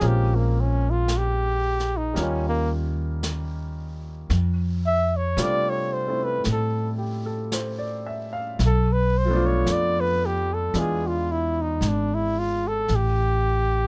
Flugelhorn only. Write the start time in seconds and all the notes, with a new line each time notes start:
0.07 G4
0.35 A#3
0.60 C#4
0.90 F4
1.17 G4
1.97 D#4
2.23 C#4
2.48 A#3
4.86 E5
5.16 C#5
5.42 D5
5.69 C#5
5.93 C5
6.24 B4
6.51 A4
8.66 A4
8.92 B4
9.17 C5
9.46 C#5
9.72 D5
10.00 B4
10.26 G4
10.54 A4
10.79 G#4
11.07 F4
11.32 E4
11.61 D#4
11.88 D4
12.14 E4
12.39 F4
12.68 A4
12.95 G4